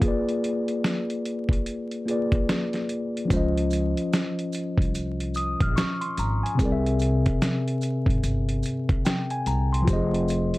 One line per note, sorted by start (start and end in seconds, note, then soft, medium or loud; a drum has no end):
0.00 2.01 A#3 medium
0.00 2.02 F4 medium
0.00 2.04 G#4 medium
0.00 kick loud
0.00 closed hi-hat medium
0.05 2.05 B4 medium
0.05 2.06 D5 medium
0.29 closed hi-hat soft
0.44 closed hi-hat medium
0.68 closed hi-hat soft
0.84 snare loud
0.84 closed hi-hat medium
1.10 closed hi-hat soft
1.25 closed hi-hat medium
1.49 kick medium
1.49 closed hi-hat soft
1.66 closed hi-hat medium
1.91 closed hi-hat soft
2.06 3.30 A#3 medium
2.06 3.30 F4 soft
2.06 3.31 G#4 soft
2.06 closed hi-hat medium
2.10 3.32 B4 soft
2.10 3.32 D5 medium
2.32 kick medium
2.32 closed hi-hat soft
2.49 snare loud
2.49 closed hi-hat medium
2.73 snare soft
2.73 closed hi-hat soft
2.89 closed hi-hat medium
3.17 closed hi-hat soft
3.25 6.11 F3 medium
3.25 6.13 C#4 medium
3.30 3.93 C#2 loud
3.30 6.14 F4 medium
3.30 6.15 C5 medium
3.30 kick loud
3.30 closed hi-hat medium
3.30 maracas medium
3.36 6.17 D#5 medium
3.58 closed hi-hat soft
3.71 closed hi-hat medium
3.71 maracas soft
3.97 closed hi-hat soft
4.13 snare loud
4.13 closed hi-hat medium
4.13 maracas medium
4.39 closed hi-hat soft
4.53 closed hi-hat medium
4.53 maracas soft
4.78 5.56 C2 medium
4.78 kick medium
4.82 closed hi-hat soft
4.95 closed hi-hat medium
4.95 maracas medium
5.20 closed hi-hat soft
5.34 5.60 D#6 medium
5.34 closed hi-hat medium
5.34 maracas soft
5.61 5.75 A#1 medium
5.61 5.77 F6 medium
5.61 kick medium
5.61 closed hi-hat soft
5.76 6.00 C#6 medium
5.76 snare loud
5.76 closed hi-hat medium
5.76 maracas medium
6.01 6.17 C6 medium
6.01 closed hi-hat soft
6.17 6.41 G#1 medium
6.17 6.43 A#5 medium
6.17 closed hi-hat medium
6.17 maracas soft
6.43 6.82 G#5 medium
6.43 closed hi-hat soft
6.55 9.82 C3 medium
6.55 9.83 C4 medium
6.59 7.21 C2 loud
6.59 9.84 G#4 medium
6.59 9.86 A#4 medium
6.59 kick loud
6.59 closed hi-hat medium
6.59 maracas medium
6.65 6.70 D5 medium
6.72 9.90 E5 medium
6.86 closed hi-hat soft
7.00 closed hi-hat medium
7.00 maracas soft
7.26 kick medium
7.26 closed hi-hat soft
7.42 snare loud
7.42 closed hi-hat medium
7.42 maracas medium
7.68 closed hi-hat soft
7.81 closed hi-hat medium
7.81 maracas soft
8.06 8.22 G#1 medium
8.06 kick medium
8.10 closed hi-hat soft
8.23 8.61 G1 loud
8.23 closed hi-hat medium
8.23 maracas medium
8.49 closed hi-hat soft
8.63 closed hi-hat medium
8.63 maracas soft
8.89 kick medium
8.89 closed hi-hat soft
9.05 9.29 G5 medium
9.05 snare loud
9.05 closed hi-hat medium
9.05 maracas medium
9.30 9.46 G#5 medium
9.30 closed hi-hat soft
9.46 9.84 C2 medium
9.46 9.71 A#5 medium
9.46 closed hi-hat medium
9.46 maracas soft
9.73 10.11 C6 medium
9.73 closed hi-hat medium
9.82 10.58 F3 medium
9.82 10.58 F4 medium
9.87 10.50 F1 loud
9.87 9.96 G4 medium
9.87 10.58 C5 medium
9.87 kick loud
9.87 closed hi-hat medium
9.87 maracas medium
9.93 10.58 G#4 medium
9.93 10.58 D#5 medium
10.14 closed hi-hat soft
10.28 closed hi-hat medium
10.28 maracas soft
10.54 closed hi-hat medium